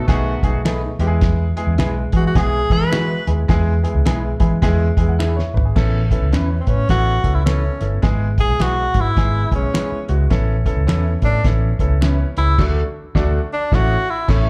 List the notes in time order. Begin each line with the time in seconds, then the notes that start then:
0.08 B1 D#3 A3 B3 D#4 F#4 G#4, kick, snare, closed hi-hat
0.43 B1 A3 B3 D#4 G#4, kick, closed hi-hat
0.65 A3 B3 D#4 G#4 A4 B4, finger snap, snare, closed hi-hat
0.99 E2 G#3 B3 E4 G4, snare, closed hi-hat
1.07 G#4
1.21 kick, snare, closed hi-hat
1.57 G#3 B3 E4 G#4, closed hi-hat
1.67 E2
1.78 B1 G#3 B3 E4 G#4 B4, finger snap, snare, closed hi-hat
2.12 E3 G#3 B3 E4 F#4 G#4, kick, closed hi-hat
2.27 F#4
2.35 B1 G#3 B3 E4 G#4, kick, snare, closed hi-hat
2.70 E3 G#3 B3 E4 G#4 B4, kick, closed hi-hat
2.92 G#3 B3 E4 F#4 G#4 B4, finger snap, snare, closed hi-hat
3.27 D#2 G#3 B3 E4 G#4, snare, closed hi-hat
3.48 E2 G#3 B3 E4 G#4, kick, snare, closed hi-hat
3.83 G#3 B3 E4 G#4, closed hi-hat
3.94 C#2
4.05 B1 G#3 B3 E4 G#4 B4, finger snap, snare, closed hi-hat
4.39 E3 G#3 B3 E4 G#4 B5, kick, closed hi-hat
4.62 E2 G#3 B3 E4 G#4 G#5, kick, snare, closed hi-hat
4.97 E2 G#3 B3 E4 G#4, kick, closed hi-hat
5.09 F#5
5.19 D4 E4 G#4 B4 E5, finger snap, snare
5.36 E4 C#5, snare
5.54 G#1 D4 B4, floor tom
5.65 B3 G#4
5.76 A1 B3 C#4 E4 A4, kick, snare, crash
6.11 B3 C#4 E4 A4, kick, closed hi-hat
6.22 C#2
6.32 E2 B3 C#4 E4 B4, finger snap, snare, closed hi-hat
6.60 C4
6.67 A2 B3 C#4 E4 B4, kick, closed hi-hat
6.89 A1 B3 C#4 E4 F#4 A4, kick, snare, closed hi-hat
7.24 C#2 B3 C#4 E4 A4, kick, closed hi-hat
7.34 E4
7.45 B3 C#4 E4 A4 B4, finger snap, snare, closed hi-hat
7.81 G1 B3 C#4 E4 A4, snare, closed hi-hat
8.02 G#1 G#3 B3 E4 G#4, kick, snare, closed hi-hat
8.38 G#3 B3 E4 G#4, kick, closed hi-hat
8.49 B1
8.60 B1 G#3 B3 E4 F#4 G#4 B4, finger snap, snare, closed hi-hat
8.94 G#2 G#3 B3 E4 F#4, kick, closed hi-hat
9.00 E4
9.17 G#1 G#3 B3 E4 G#4, kick, snare, closed hi-hat
9.51 B1 G#3 B3 C#4 E4 G#4, kick, closed hi-hat
9.74 G#3 B3 E4 G#4 B4, finger snap, snare, closed hi-hat
9.92 muted fingered electric bass stroke
10.08 C#2 G#3 B3 E4 F#4, closed hi-hat
10.30 A1 B3 C#4 E4 A4, kick, snare, closed hi-hat
10.66 B3 C#4 E4 A4, kick, closed hi-hat
10.77 C#2
10.87 E2 B3 C#4 E4 A4 B4, finger snap, snare, closed hi-hat
11.22 A2 B3 C#4 D4 E4 A4, kick, closed hi-hat
11.44 A1 B3 C#4 E4 A4, kick, snare, closed hi-hat
11.79 C#2 B3 C#4 E4 A4, kick, closed hi-hat
12.01 B3 C#4 E4 B4, finger snap, snare, closed hi-hat
12.37 C#2 B3 C#4 E4 G#4, snare, closed hi-hat
12.58 D2 A3 D4 F#4 A4 D5, kick, snare, crash
13.15 D2 A3 D4 F#4 A4 D5, kick, snare
13.53 D4
13.72 A1 A3 C#4 E4 F#4 A4 C#5, kick, snare
14.10 E4
14.28 A1 A3 C#4 E4 A4 C#5, kick, snare, crash